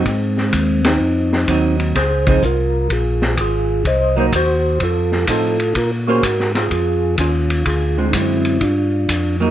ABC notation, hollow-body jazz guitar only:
X:1
M:4/4
L:1/8
Q:"Swing" 1/4=126
K:Db
V:1 name="Hollow-body jazz guitar"
z6 [G,CE]2 | z [F,CE] z6 | z [G,B,E] z4 [F,CE=A] z | z [B,DAc] z6 |
z [=D,A,C]3 z3 [G,B,E] |]